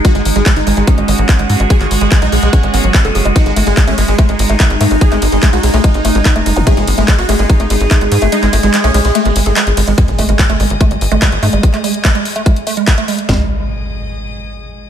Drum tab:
RD |----------------|----------------|--x---x---x---x-|--x---x---x---x-|
HH |xxoxxxoxxxoxxxox|xxoxxxoxxxoxxxox|xxoxxxoxxxoxxxox|xxoxxxoxxxoxxxox|
CP |----x-------x---|-x--x-------x---|----x-------x---|-x--x-------x---|
SD |----------------|----------------|----------------|----------------|
FT |----------------|----------------|----------------|----------------|
BD |o---o---o---o---|o---o---o---o---|o---o---o---o---|o---o---o---o---|

RD |--x---x---x---x-|--x---x---x---x-|----------------|----------------|
HH |xxoxxxoxxxoxxxox|xxoxxxoxxxoxxxox|xxoxxxoxxxoxxxox|xxoxxxoxxxoxxxox|
CP |----x-------x---|-x--x-------x---|----x-------x---|-x--x-------x---|
SD |----------------|----------------|----------------|----------------|
FT |----------------|----------------|----------------|----------------|
BD |o---o---o---o---|----------------|o---o---o---o---|o---o---o---o---|

RD |----------------|
HH |----------------|
CP |----------------|
SD |o---------------|
FT |o---------------|
BD |----------------|